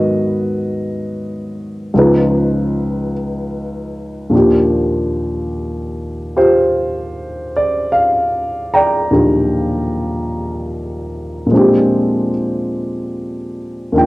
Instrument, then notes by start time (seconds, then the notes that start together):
grand piano
Already playing: G#2 D#3 F#3 B3 F#4 B4 D#5
1.94 C#2 C#3 F3 D#4
1.99 B4
4.30 D#2 A#2 F3 D4
4.36 G4
6.37 F4 G4 C5
7.57 D5
7.92 F5
8.74 D5 G5 A#5
9.11 D#2 A#2 F3 D4 G4
11.46 A#2 F3
11.51 G#3 C4
11.56 D4 G4
13.92 D#2 D#3 F3 D4
13.98 G5